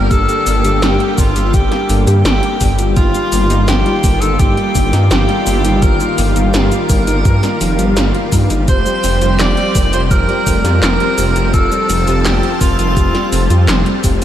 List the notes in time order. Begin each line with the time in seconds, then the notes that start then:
Already playing: D3 G3 A#3 G4 A#4
0.11 G1 G3 A#3 D4 G4 A4, kick, closed hi-hat, shaker
0.29 G3 A#3 D4 G4, closed hi-hat, shaker
0.47 G1 D4, open hi-hat, shaker
0.64 G1 G3 A#3 D4 G4, closed hi-hat, shaker
0.82 G1 G3 G4, snare, closed hi-hat, shaker
1.00 G3 A#3 D4 G4, closed hi-hat
1.18 G1 G3 A#3 D4 F4 A#4, kick, open hi-hat, shaker
1.36 G1 G4, closed hi-hat, shaker
1.54 G1 G3 A#3 D4 G4, kick, closed hi-hat, shaker
1.72 G3 A#3 D4 G4, snare, closed hi-hat
1.89 G1 G3 A#3 D4 A4, open hi-hat, shaker
2.07 G2 G3 A#3 D4 G4, closed hi-hat, shaker
2.25 G1 G3 D4 G4, snare, closed hi-hat, shaker
2.43 A#3, closed hi-hat
2.61 G1 G3 A#3 D4 G4, kick, open hi-hat, shaker
2.79 G1 G3 A#3 D4 F4 G4, closed hi-hat, shaker
2.96 G1 D#3 F3 G3 A#3 D#4 F4, kick, closed hi-hat, shaker
3.14 G3 A#3 D#4 F4, closed hi-hat, shaker
3.32 G1 A#3, open hi-hat, shaker
3.50 G1 G3 A#3 D#4 F4, closed hi-hat, shaker
3.68 G1 F3 G4, snare, closed hi-hat, shaker
3.86 G3 A#3 D#4 F4, closed hi-hat
4.04 G1 G3 A#3 D#4 A#4, kick, open hi-hat, shaker
4.21 G1 D#4 A4, closed hi-hat, shaker
4.39 G1 F3 G3 A#3 D#4 F4 G4, kick, closed hi-hat, shaker
4.57 G3 A#3 D#4 F4, closed hi-hat
4.75 G1 G3 A#3 D#4 G4, kick, open hi-hat, shaker
4.93 G2 G3 A#3 D#4 F4, snare, closed hi-hat, shaker
5.11 G1 F3 G3 A#3 D#4 F4 G4, snare, closed hi-hat, shaker
5.29 G3, closed hi-hat
5.47 G1 G3 A#3 D#4 F4, open hi-hat, shaker
5.65 G1 G3 A#3 D#4 F4, closed hi-hat, shaker
5.82 G1 F3 G3 A#3 D#4 F4 A#4, kick, closed hi-hat, shaker
6.00 G3 A#3 D#4 F4, closed hi-hat, shaker
6.18 G1 A#3, open hi-hat, shaker
6.36 G1 G3 A#3 D#4 F4, closed hi-hat, shaker
6.54 G1 F3 A#4, snare, closed hi-hat, shaker
6.72 G3 A#3 D#4 F4, closed hi-hat, shaker
6.89 G1 G3 A#3 D#4 A#4, kick, open hi-hat, shaker
7.07 G1 D#4, closed hi-hat, shaker
7.25 G2 F3 G3 A#3 D#4 F4, kick, closed hi-hat, shaker
7.43 G3 A#3 D#4 F4, snare, closed hi-hat, shaker
7.61 F1 F3 G3 A#3 D#4 G4, open hi-hat, shaker
7.79 G1 F3 G3 A#3 D#4 F4, closed hi-hat, shaker
7.97 G1 G3 A#3 F4, snare, closed hi-hat, shaker
8.15 F4, closed hi-hat
8.32 G2 G3 A#3 D#4 F4, kick, open hi-hat, shaker
8.50 G1 G3 A#3 D#4 F4, closed hi-hat, shaker
8.68 F1 F3 G3 C4 F4 G4 C5, kick, closed hi-hat, shaker
8.86 G3 C4 F4 G4, closed hi-hat, shaker
9.04 F1 C4, open hi-hat, shaker
9.21 F1 G3 C4 F4 G4, closed hi-hat, shaker
9.39 F1 F3 D5, snare, clap, closed hi-hat, shaker
9.57 G3 C4 F4 G4, closed hi-hat
9.75 F1 G3 C4 F4 A#4, kick, open hi-hat, shaker
9.93 F1 F4 C5, closed hi-hat, shaker
10.11 F1 F3 G3 C4 F4 G4 A#4, kick, closed hi-hat, shaker
10.29 G3 C4 F4 G4, closed hi-hat
10.47 F1 G3 C4 F4 A4, kick, open hi-hat, shaker
10.64 F2 G3 C4 F4 G4, snare, closed hi-hat, shaker
10.82 F1 F3 G3 C4 F4 G4 A#4, snare, clap, closed hi-hat, shaker
11.00 G3, closed hi-hat
11.18 F1 G3 C4 F4 G4, open hi-hat, shaker
11.36 F1 G3 C4 F4 G4, closed hi-hat, shaker
11.54 F1 F3 G3 C4 F4 G4 A4 A5, kick, closed hi-hat, shaker
11.72 G3 C4 F4 G4, closed hi-hat, shaker
11.90 F1 C4, open hi-hat, shaker
12.08 F1 G3 C4 F4 G4, closed hi-hat, shaker
12.25 F1 F3 G4, snare, clap, closed hi-hat, shaker
12.43 G3 C4 F4 G4, closed hi-hat
12.61 F1 G3 C4 F4 A#4, kick, open hi-hat, shaker
12.79 F1 F4, closed hi-hat, shaker
12.97 F1 F3 G3 C4 F4 G4, kick, closed hi-hat, shaker
13.15 G3 C4 F4 G4, snare, closed hi-hat
13.32 F1 G3 C4 F4 A4, open hi-hat, shaker
13.50 F2 G3 C4 F4 G4, closed hi-hat, shaker
13.68 F1 F3 G3 C4, snare, clap, closed hi-hat, shaker
13.86 G3, closed hi-hat
14.04 F1 G3 C4 F4 G4, kick, open hi-hat, shaker